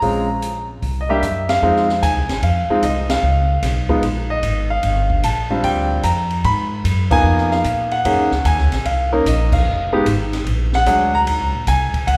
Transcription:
Already playing: grand piano A#5
0.02 upright bass A#1, grand piano G#3 C4 C#4 F4, kick, open hi-hat
0.42 closed hi-hat
0.82 upright bass C2, kick, open hi-hat
1.01 grand piano D#5
1.09 grand piano G3 A#3 D4 G4 E5
1.22 upright bass F#2, cross-stick, closed hi-hat
1.49 grand piano F5, snare, ride
1.62 upright bass F2, grand piano G#3 C4 D#4 F4
1.76 snare
1.89 snare
2.02 upright bass D#2, grand piano G#5, kick, hi-hat pedal, ride
2.15 upright bass C2
2.29 upright bass G#1, snare, ride
2.42 upright bass F2, grand piano F5, kick, ride
2.69 grand piano G#3 C4 D#4 F4, muted upright bass stroke
2.82 upright bass C2, grand piano D#5, kick, hi-hat pedal, ride
3.09 grand piano F5, snare, ride
3.22 upright bass C#2
3.63 upright bass B1, kick, snare, hi-hat pedal, ride
3.89 grand piano G#3 B3 D#4 F4, kick
4.02 upright bass A#1, kick, ride
4.30 grand piano D#5
4.42 upright bass G#1, kick, hi-hat pedal, ride
4.70 grand piano F5
4.83 upright bass G1, kick, ride
5.10 kick
5.23 upright bass A#1, grand piano A5, kick, hi-hat pedal, ride
5.50 grand piano G3 C4 D4 F4
5.63 upright bass D2, grand piano G5, kick, ride
6.03 upright bass F2, grand piano A#5, kick, hi-hat pedal, ride
6.30 ride
6.44 upright bass G#2, grand piano B5, kick, ride
6.84 upright bass F#2, kick, hi-hat pedal, ride
7.11 grand piano A#3 B3 D#4 F4 G#5, kick, crash
7.23 upright bass F2
7.38 snare
7.51 grand piano F5, snare
7.64 upright bass A#2, kick, hi-hat pedal, ride
7.91 grand piano F#5, ride
8.05 upright bass F#2, grand piano A#3 C#4 D#4 G#4, kick, ride
8.18 upright bass D#2
8.31 upright bass C#2, snare
8.45 upright bass D#2, grand piano G#5, kick, hi-hat pedal, ride
8.58 upright bass C#2, snare
8.72 upright bass A#1, snare, ride
8.85 upright bass C2, grand piano F5, kick, ride
9.12 grand piano A#3 C#4 D#4 A#4
9.26 upright bass A#1, grand piano D#5, kick, hi-hat pedal, ride
9.52 grand piano F5, kick, crash
9.66 upright bass F1
9.93 grand piano G#3 B3 D#4 G4
10.06 upright bass G#1, kick, hi-hat pedal, ride
10.33 snare, ride
10.46 upright bass A#1, kick, ride
10.73 grand piano F#5, snare
10.86 upright bass D2, grand piano F#3 G#3 D4 G#4, kick, hi-hat pedal, ride
11.15 grand piano A#5
11.27 upright bass D#2, kick, ride
11.40 upright bass C#2
11.53 upright bass A#1
11.67 upright bass C2, grand piano G#5, kick, hi-hat pedal, ride
11.94 muted upright bass stroke, kick, ride
12.07 upright bass C#2, grand piano F#5, kick, ride

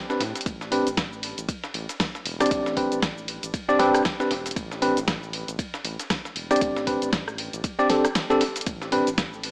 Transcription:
0.10 tine electric piano C4 D4 G4 B4, snare, cabasa
0.20 analog synth bass A2, snare, open hi-hat, ride
0.35 snare, closed hi-hat, cabasa
0.41 closed hi-hat
0.46 analog synth bass A1, kick, closed hi-hat, ride, cabasa
0.61 snare, cabasa
0.72 tine electric piano C4 D4 G4 B4, open hi-hat, ride
0.87 analog synth bass A1, closed hi-hat, cabasa
0.97 kick, snare, closed hi-hat, ride, cabasa
1.13 cabasa
1.23 open hi-hat, ride
1.38 analog synth bass A1, closed hi-hat, cabasa
1.49 kick, closed hi-hat, ride, cabasa
1.64 snare, cabasa
1.74 analog synth bass A1, open hi-hat, ride
1.89 snare, closed hi-hat, cabasa
2.00 kick, snare, closed hi-hat, open hi-hat, cabasa
2.15 snare, cabasa
2.26 analog synth bass E1, open hi-hat, ride
2.40 tine electric piano C4 D4 G4 D5, cross-stick, snare, closed hi-hat, cabasa
2.46 closed hi-hat
2.51 analog synth bass A1, kick, closed hi-hat, ride, cabasa
2.66 snare, cabasa
2.77 tine electric piano C4 D4 G4 B4, kick, open hi-hat, ride
2.92 analog synth bass A1, closed hi-hat, cabasa
3.02 kick, snare, closed hi-hat, ride, cabasa
3.18 cabasa
3.28 open hi-hat, ride
3.43 analog synth bass A1, closed hi-hat, cabasa
3.54 kick, closed hi-hat, ride, cabasa
3.68 tine electric piano C4 D4 G4 D5, snare, cabasa
3.79 analog synth bass A1, tine electric piano C4 D4 G4 B4, snare, open hi-hat, ride
3.94 cross-stick, open hi-hat, cabasa
4.05 kick, snare, closed hi-hat, ride, cabasa
4.20 tine electric piano C4 D4 G4 B4, snare, cabasa
4.31 analog synth bass E1, snare, open hi-hat, ride
4.46 snare, closed hi-hat, cabasa
4.51 closed hi-hat
4.56 analog synth bass A1, kick, closed hi-hat, ride, cabasa
4.71 snare, cabasa
4.82 tine electric piano C4 D4 G4 B4, open hi-hat, ride
4.97 analog synth bass A1, closed hi-hat, cabasa
5.08 kick, snare, closed hi-hat, ride, cabasa
5.23 cabasa
5.33 open hi-hat, ride
5.48 analog synth bass A1, closed hi-hat, cabasa
5.59 kick, closed hi-hat, ride, cabasa
5.74 snare, cabasa
5.84 analog synth bass A1, open hi-hat, ride
5.99 snare, closed hi-hat, cabasa
6.10 kick, snare, closed hi-hat, open hi-hat, cabasa
6.25 snare, cabasa
6.36 analog synth bass E1, open hi-hat, ride
6.51 tine electric piano C4 D4 G4 D5, cross-stick, snare, closed hi-hat, cabasa
6.56 closed hi-hat
6.61 analog synth bass A1, kick, closed hi-hat, ride, cabasa
6.76 snare, cabasa
6.87 tine electric piano C4 D4 G4 B4, kick, open hi-hat, ride
7.02 analog synth bass A1, closed hi-hat, cabasa
7.13 kick, snare, closed hi-hat, ride, cabasa
7.28 cross-stick, cabasa
7.38 open hi-hat, ride
7.53 analog synth bass A1, closed hi-hat, cabasa
7.64 kick, closed hi-hat, ride, cabasa
7.79 tine electric piano C4 D4 G4 D5, snare, cabasa
7.89 tine electric piano C4 D4 G4 A4, snare, open hi-hat, ride
8.05 cross-stick, open hi-hat, cabasa
8.15 snare, closed hi-hat, ride, cabasa
8.30 tine electric piano C4 D4 G4 A4, snare, cabasa
8.41 snare, open hi-hat, ride
8.56 snare, closed hi-hat, cabasa
8.61 closed hi-hat
8.66 analog synth bass A1, kick, closed hi-hat, ride, cabasa
8.82 snare, cabasa
8.92 tine electric piano C4 D4 G4 B4, open hi-hat, ride
9.07 analog synth bass A1, closed hi-hat, cabasa
9.18 kick, snare, closed hi-hat, ride, cabasa
9.33 cabasa
9.43 open hi-hat, ride

